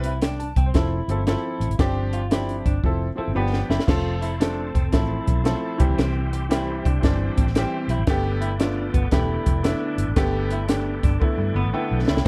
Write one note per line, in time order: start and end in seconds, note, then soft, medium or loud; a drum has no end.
0.00 0.52 C2 loud
0.00 0.10 E4 medium
0.00 0.10 B4 loud
0.00 closed hi-hat medium
0.05 0.18 E4 medium
0.22 0.47 D4 medium
0.22 0.39 G5 soft
0.22 snare loud
0.22 closed hi-hat medium
0.40 0.56 A5 medium
0.40 closed hi-hat soft
0.56 0.70 C2 medium
0.56 0.70 C4 medium
0.56 0.66 G5 medium
0.56 kick medium
0.56 closed hi-hat medium
0.66 0.91 C5 medium
0.74 1.00 F1 loud
0.74 0.96 F3 medium
0.74 0.97 C4 medium
0.74 1.24 E4 medium
0.74 0.97 E4 medium
0.74 0.98 A4 medium
0.74 kick medium
0.74 snare medium
0.74 closed hi-hat medium
1.08 1.34 G1 medium
1.08 1.21 F3 medium
1.08 1.21 C4 medium
1.08 1.21 E4 medium
1.08 1.22 A4 medium
1.08 closed hi-hat medium
1.27 1.66 F3 medium
1.27 1.67 C4 medium
1.27 1.76 E4 medium
1.27 1.67 E4 medium
1.27 1.67 A4 medium
1.27 snare medium
1.27 closed hi-hat medium
1.60 1.67 A1 medium
1.60 closed hi-hat medium
1.69 1.76 G#1 medium
1.69 closed hi-hat soft
1.79 2.19 F3 medium
1.79 2.19 C4 medium
1.79 2.19 D4 medium
1.79 2.03 G4 medium
1.79 2.19 G4 loud
1.79 kick loud
1.79 snare loud
1.79 closed hi-hat medium
2.13 2.26 F4 medium
2.13 closed hi-hat medium
2.31 2.71 F3 medium
2.31 2.71 C4 medium
2.31 2.72 D4 medium
2.31 2.56 E4 medium
2.31 2.72 G4 medium
2.31 snare loud
2.31 closed hi-hat medium
2.49 closed hi-hat soft
2.65 2.79 G1 medium
2.65 2.79 D4 medium
2.65 kick medium
2.65 closed hi-hat soft
2.83 3.09 F1 medium
2.83 3.06 F3 medium
2.83 3.06 C4 medium
2.83 3.06 E4 medium
2.83 3.07 A4 medium
2.83 kick medium
3.15 3.28 F3 medium
3.15 3.29 C4 medium
3.15 3.31 C4 medium
3.15 3.29 E4 medium
3.15 3.30 A4 medium
3.15 muted fingered electric bass stroke soft
3.28 3.34 G1 medium
3.35 3.61 G1 medium
3.35 3.75 F3 medium
3.35 3.60 B3 medium
3.35 3.75 B3 medium
3.35 3.76 D4 medium
3.35 3.76 G4 medium
3.35 3.52 B5 medium
3.53 3.70 G5 medium
3.53 snare medium
3.70 3.77 F#1 medium
3.70 3.83 E4 medium
3.70 3.87 E5 medium
3.70 snare medium
3.80 snare medium
3.87 4.71 F1 medium
3.87 4.28 F3 medium
3.87 4.28 A3 medium
3.87 4.28 C4 medium
3.87 4.12 F4 medium
3.87 5.78 A4 medium
3.87 4.29 A4 loud
3.87 8.04 C5 medium
3.87 5.78 A5 medium
3.87 kick loud
3.87 snare loud
3.87 crash medium
4.21 4.35 E4 medium
4.21 closed hi-hat medium
4.40 4.80 F3 medium
4.40 4.80 A3 medium
4.40 4.80 C4 medium
4.40 4.65 D4 medium
4.40 4.81 A4 medium
4.40 snare loud
4.40 closed hi-hat medium
4.75 4.88 F1 medium
4.75 4.88 C4 medium
4.75 kick medium
4.75 closed hi-hat medium
4.92 5.18 A1 medium
4.92 5.32 F3 medium
4.92 5.33 A3 medium
4.92 5.33 C4 medium
4.92 5.42 E4 medium
4.92 5.33 A4 medium
4.92 kick medium
4.92 snare loud
4.92 closed hi-hat medium
5.27 5.53 B1 medium
5.27 kick medium
5.27 closed hi-hat medium
5.44 5.79 F3 medium
5.44 5.79 A3 medium
5.44 5.78 C4 medium
5.44 5.95 E4 medium
5.44 5.80 A4 medium
5.44 snare loud
5.44 closed hi-hat medium
5.78 5.87 C2 medium
5.78 6.39 E3 medium
5.78 6.39 G3 medium
5.78 6.39 C4 medium
5.78 8.05 G4 medium
5.78 6.40 G4 medium
5.78 8.04 E5 medium
5.78 12.21 G5 medium
5.78 kick loud
5.78 closed hi-hat medium
5.89 5.96 C#2 medium
5.98 6.81 C2 medium
5.98 6.22 C4 medium
5.98 snare loud
5.98 closed hi-hat medium
6.33 6.46 G4 medium
6.33 closed hi-hat medium
6.49 6.89 E3 medium
6.49 6.90 G3 medium
6.49 6.90 C4 medium
6.49 6.75 E4 medium
6.49 6.90 G4 medium
6.49 snare loud
6.49 closed hi-hat medium
6.85 6.98 C2 medium
6.85 6.98 D4 medium
6.85 kick medium
6.85 closed hi-hat medium
7.02 7.28 G1 medium
7.02 7.42 E3 medium
7.02 7.42 G3 medium
7.02 7.43 C4 medium
7.02 7.43 D4 medium
7.02 kick medium
7.02 snare medium
7.02 closed hi-hat medium
7.37 7.64 A1 loud
7.37 7.50 C4 medium
7.37 kick medium
7.37 closed hi-hat medium
7.47 snare soft
7.55 7.95 E3 medium
7.55 7.95 G3 medium
7.55 7.79 C4 medium
7.55 7.96 C4 medium
7.55 7.96 G4 medium
7.55 snare loud
7.55 closed hi-hat medium
7.88 7.95 B1 medium
7.88 8.02 E4 medium
7.88 closed hi-hat medium
7.98 8.05 G#1 medium
8.07 8.47 D3 medium
8.07 8.47 A3 medium
8.07 8.48 B3 loud
8.07 8.32 G4 medium
8.07 8.48 G4 loud
8.07 12.22 A4 medium
8.07 12.22 B4 medium
8.07 12.22 D5 medium
8.07 kick loud
8.07 snare loud
8.07 closed hi-hat medium
8.41 8.54 E4 medium
8.41 closed hi-hat medium
8.59 8.99 D3 medium
8.59 8.99 A3 medium
8.59 9.00 B3 medium
8.59 8.84 D4 medium
8.59 9.00 F4 medium
8.59 snare loud
8.59 closed hi-hat loud
8.94 9.07 G1 loud
8.94 9.07 B3 medium
8.94 kick medium
8.94 closed hi-hat medium
9.11 9.37 E1 medium
9.11 9.51 D3 medium
9.11 9.51 A3 medium
9.11 9.51 B3 medium
9.11 9.61 E4 medium
9.11 9.52 G4 medium
9.11 kick medium
9.11 snare loud
9.11 closed hi-hat medium
9.46 9.72 F1 medium
9.46 kick medium
9.46 closed hi-hat medium
9.63 10.03 D3 medium
9.63 10.03 A3 medium
9.63 10.04 B3 medium
9.63 10.14 D4 medium
9.63 10.04 E4 medium
9.63 snare loud
9.63 closed hi-hat medium
9.98 10.05 G1 medium
9.98 closed hi-hat medium
10.08 10.14 G#1 medium
10.16 10.99 G1 medium
10.16 10.56 D3 loud
10.16 10.56 A3 medium
10.16 10.56 B3 loud
10.16 10.41 G4 medium
10.16 10.56 G4 loud
10.16 kick loud
10.16 snare loud
10.16 closed hi-hat medium
10.51 10.64 E4 medium
10.51 closed hi-hat medium
10.68 11.08 D3 medium
10.68 11.08 A3 medium
10.68 11.08 B3 medium
10.68 10.94 D4 medium
10.68 11.09 G4 medium
10.68 snare loud
10.68 closed hi-hat loud
11.03 11.16 G1 medium
11.03 11.16 D4 medium
11.03 kick loud
11.03 closed hi-hat medium
11.20 11.60 D3 medium
11.20 11.60 A3 medium
11.20 11.60 B3 medium
11.20 11.61 E4 medium
11.20 kick loud
11.38 11.51 G2 medium
11.55 11.62 G1 loud
11.55 11.69 B3 medium
11.55 11.72 B5 medium
11.65 11.71 A1 medium
11.73 12.12 D3 medium
11.73 12.13 A3 medium
11.73 12.13 B3 medium
11.73 11.98 B3 medium
11.73 12.13 E4 medium
11.73 12.22 G5 medium
11.91 12.04 B1 loud
12.08 12.15 D2 medium
12.08 12.21 E4 medium
12.08 snare loud
12.17 12.24 C#2 medium
12.17 snare medium